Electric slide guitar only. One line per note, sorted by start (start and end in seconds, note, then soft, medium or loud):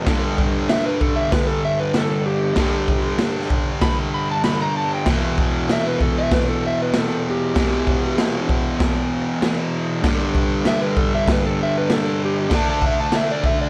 0.70 0.85 E5 loud
0.85 1.00 B4 loud
1.01 1.16 A4 medium
1.16 1.31 E5 loud
1.31 1.47 B4 loud
1.47 1.62 A4 medium
1.65 1.79 E5 medium
1.80 1.95 B4 medium
1.98 2.27 A4 medium
2.26 3.47 G4 loud
3.82 3.97 B5 loud
4.14 4.29 B5 medium
4.31 4.44 A5 medium
4.45 4.60 B5 loud
4.62 4.76 A#5 loud
4.77 4.91 A5 loud
4.94 5.08 G5 medium
5.73 5.86 E5 loud
5.86 6.01 B4 loud
6.02 6.16 A4 medium
6.18 6.32 E5 loud
6.33 6.47 B4 medium
6.49 6.63 A4 medium
6.67 6.80 E5 medium
6.82 6.95 B4 medium
6.98 7.26 A4 medium
7.30 8.48 G4 loud
10.67 10.81 E5 loud
10.81 10.96 B4 loud
10.97 11.12 A4 medium
11.15 11.28 E5 loud
11.32 11.45 B4 medium
11.46 11.59 A4 medium
11.63 11.75 E5 loud
11.78 11.91 B4 loud
11.93 12.21 A4 loud
12.25 12.52 G4 loud
12.56 12.69 A5 medium
12.70 12.83 A5 medium
12.86 12.99 E5 loud
13.00 13.14 A5 loud
13.16 13.29 E5 loud
13.31 13.45 D5 loud
13.46 13.59 E5 medium
13.61 13.69 D5 medium